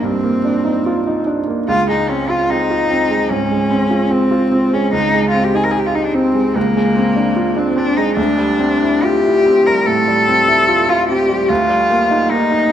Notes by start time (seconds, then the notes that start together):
Already playing: C2 A#3 D4 D#4 F4
0.03 G2 C4
0.24 A#3
0.45 D4
0.65 D#4
0.86 F4
1.07 D#4
1.27 D4
1.47 A#3
1.68 C#2 F4
1.89 G#3 D#4
2.09 C4 C#4
2.30 F4
2.50 C4 D#4
2.71 F4
2.91 C4
3.10 G#3
3.30 G#2 C#4
3.51 G#3
3.71 C4
3.90 F4
4.11 C4
4.31 F4
4.52 C4
4.73 G#3 C#4
4.93 C#2 D#4
5.14 G#3
5.30 F4
5.34 C4
5.44 G4
5.54 D#4 G#4
5.64 A#4
5.71 G#4
5.75 G4
5.87 F4
5.95 D#4
6.04 D4
6.14 C4
6.34 G#3
6.55 C#2 A#3
6.76 G#3
6.97 C4
7.16 D4
7.36 F4
7.57 C4 D4
7.77 C4 D4
7.97 G#3 D#4
8.16 D2 D4
8.38 G3
8.59 C4
8.82 E4
9.03 F4 G4
9.25 E4
9.46 C4
9.66 G3 A#4
9.86 A2 A4
10.08 G3
10.28 C4
10.48 E4
10.69 F4
10.89 E4 F4
11.08 C4 G4
11.29 G3
11.49 D2 F4
11.69 G3
11.90 A#3
12.11 D#4
12.30 A#3 D#4
12.52 D#4